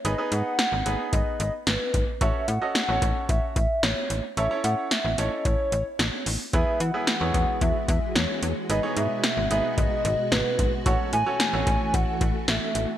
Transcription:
0.05 fm bass G#1, grand piano B3 D#4 G#4 B4, soft synth lead D#5, closed hi-hat
0.18 grand piano B3 D#4 G#4 B4
0.32 fm bass G#2, soft synth lead F#5, closed hi-hat
0.59 snare, closed hi-hat
0.72 fm bass G#1
0.86 fm bass G#1, grand piano B3 D#4 G#4 B4, closed hi-hat
1.13 fm bass G#1, soft synth lead D#5, kick, closed hi-hat
1.40 fm bass G#1, soft synth lead D#5, closed hi-hat
1.67 fm bass G#1, soft synth lead B4, snare, closed hi-hat
1.94 fm bass G#1, kick, closed hi-hat
2.21 fm bass A1, grand piano C#4 F#4 A4 C#5, soft synth lead E5, kick, closed hi-hat
2.48 fm bass A2, soft synth lead F#5, closed hi-hat
2.62 grand piano C#4 F#4 A4 D#5
2.75 snare, closed hi-hat
2.89 fm bass A1, grand piano C#4 F#4 A4 C#5
3.02 fm bass A1, kick, closed hi-hat
3.29 fm bass A1, soft synth lead E5, kick, closed hi-hat
3.56 fm bass A1, soft synth lead E5, kick, closed hi-hat
3.83 fm bass A1, soft synth lead C#5, snare, closed hi-hat
4.10 fm bass A1, closed hi-hat
4.37 fm bass A1, grand piano C#4 E4 A4 C#5, soft synth lead E5, closed hi-hat
4.51 grand piano C#4 E4 A4 C#5
4.64 fm bass A2, soft synth lead F#5, closed hi-hat
4.91 soft synth lead E5, snare, closed hi-hat
5.05 fm bass A1
5.18 fm bass A1, grand piano C#4 E4 A4 C#5, soft synth lead D#5, closed hi-hat
5.45 fm bass A1, soft synth lead C#5, kick, closed hi-hat
5.72 fm bass A1, closed hi-hat
5.99 fm bass A1, snare, closed hi-hat
6.26 fm bass A1, open hi-hat
6.53 fm bass E2, string machine E3 G#3 F#4, grand piano B3 E4 G#4 B4, soft synth lead E5, kick, closed hi-hat
6.80 fm bass E3, soft synth lead F#5, closed hi-hat
6.94 grand piano B3 E4 G#4 B4
7.07 snare, closed hi-hat
7.21 fm bass E2, grand piano B3 E4 G#4 C#5
7.34 fm bass E2, kick, closed hi-hat
7.61 fm bass E2, soft synth lead E5, kick, closed hi-hat
7.88 fm bass E2, soft synth lead E5, kick, closed hi-hat
8.15 fm bass E2, soft synth lead C#5, snare, closed hi-hat
8.43 fm bass E2, closed hi-hat
8.70 fm bass G#1, string machine B2, grand piano B3 D#4 G#4 B4, soft synth lead D#5, closed hi-hat
8.83 grand piano B3 D#4 G#4 C#5
8.97 fm bass G#2, soft synth lead E5, closed hi-hat
9.24 snare, closed hi-hat
9.37 fm bass G#1
9.51 fm bass G#1, grand piano B3 D#4 G#4 B4, soft synth lead E5, closed hi-hat
9.78 fm bass G#1, soft synth lead D#5, kick, closed hi-hat
10.05 fm bass G#1, soft synth lead D#5, closed hi-hat
10.32 fm bass G#1, soft synth lead B4, snare, closed hi-hat
10.59 fm bass G#1, kick, closed hi-hat
10.86 fm bass A1, string machine E3 A3, grand piano C#4 F#4 A4 C#5, soft synth lead F#5, kick, closed hi-hat
11.13 fm bass A2, soft synth lead G#5, closed hi-hat
11.26 grand piano C#4 F#4 A4 C#5
11.40 snare, closed hi-hat
11.53 fm bass A1, grand piano C#4 F#4 A4 C#5
11.67 fm bass A1, kick, closed hi-hat
11.94 fm bass A1, soft synth lead F#5, kick, closed hi-hat
12.21 fm bass A1, soft synth lead F#5, kick, closed hi-hat
12.48 fm bass A1, soft synth lead E5, snare, closed hi-hat
12.75 fm bass A1, closed hi-hat

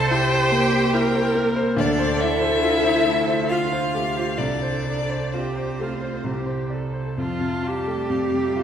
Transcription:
Already playing: grand piano C2 C5 D5, cello A4, viola C5, violin A5
0.11 grand piano E4, cello G4, violin G5
0.31 grand piano C5
0.51 grand piano A#3
0.72 grand piano C5
0.94 grand piano E4, viola A#4
1.15 grand piano C5
1.35 grand piano A#3
1.56 grand piano C5
1.76 grand piano D2, cello D4, viola A4, violin D5
1.99 grand piano C5
2.20 cello E4, grand piano D5, violin E5
2.41 grand piano C5
2.63 grand piano F4
2.83 grand piano C5
3.05 grand piano A3
3.27 grand piano C5
3.49 grand piano F4, viola F4, cello F4, violin F5
3.72 grand piano C5
3.94 grand piano A3, viola G4
4.17 grand piano C5
4.38 grand piano C2, cello D4, viola A4, violin D5
4.62 grand piano C5
4.86 grand piano D5
5.10 grand piano C5
5.32 cello C4, grand piano F4, viola G4, violin C5
5.56 grand piano C5
5.80 grand piano A3, viola F4
6.02 grand piano C5
6.24 grand piano C2, viola G4
6.46 grand piano C5
6.70 viola A4, grand piano D5
6.93 grand piano C5
7.17 grand piano F2, cello F3, viola F4, violin A5
7.41 grand piano C3
7.63 grand piano F4
7.67 cello G3, viola G4
7.87 grand piano A3
8.09 grand piano F2, violin F5
8.34 grand piano C3
8.56 grand piano F4, violin E5

